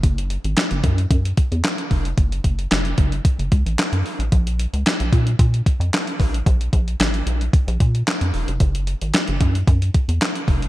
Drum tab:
HH |xxxxxxxxxxxxxxox|xxxxxxxxxxxxxxox|xxxxxxxxxxxxxxox|xxxxxxxxxxxxxxox|
CP |----x-------x---|----x-------x---|----x-------x---|----x-------x---|
SD |----o-------o---|----o-------o---|----o-------o---|----o-------o---|
BD |o-----o-o-o---o-|o-o---o-o-o-----|o-----o-o-o---o-|o-o-----o-o-----|

HH |xxxxxxxxxxxxxxox|
CP |----x-------x---|
SD |----o-------o---|
BD |o-----o-o-o---o-|